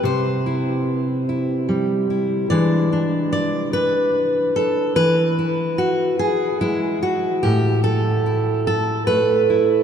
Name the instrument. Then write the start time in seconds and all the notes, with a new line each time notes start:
steel-string acoustic guitar
Already playing: E4
0.03 C3 C5
0.46 E4
1.29 E4
1.69 G3
2.10 E4
2.50 E3 G#3 D4 D5
2.93 D4
3.33 D5
3.73 B4
4.56 A4
4.96 E3 B4
5.39 E4
5.78 F#4
6.19 G#4
6.61 G#3 E4
7.03 F#4
7.43 A2 G4
7.84 A4
8.26 E4
8.67 A4
9.07 A3 B4
9.50 E4